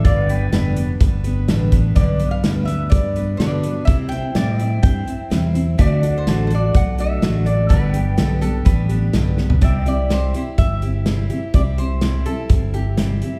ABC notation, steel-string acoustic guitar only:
X:1
M:4/4
L:1/8
Q:1/4=125
K:C
V:1 name="Steel-string acoustic guitar"
[G,,D,G,B,DB] [G,B,DB] [G,,D,G,B,DB] [G,B,DB] [G,B,DB] [G,B,DB] [G,,D,G,B,DB] [G,B,DB] | [G,,D,G,B,DB] [G,B,DB] [G,,D,G,B,DB] [G,B,DB] [G,B,DB] [G,B,DB] [G,,D,G,B,DB] [G,B,DB] | [C,G,CEc] [CEc] [C,G,CEc] [CEc] [G,CEc] [CEc] [C,G,CEc] [CEc] | [D,A,D^FA] [DFA] [D,A,DFA] [DFA] [A,DFA] [DFA] [D,A,DFA] [DFA] |
[G,,D,G,B,DG] [G,B,DG] [G,,D,G,B,DG] [G,B,DG] [G,B,DG] [G,B,DG] [G,,D,G,B,DG] [G,B,DG] | [C,G,CEG] [CEG] [C,G,CEG] [CEG] [G,CEG] [CEG] [C,G,CEG] [CEG] | [C,G,CEG] [CEG] [C,G,CEG] [CEG] [G,CEG] [CEG] [C,G,CEG] [CEG] |]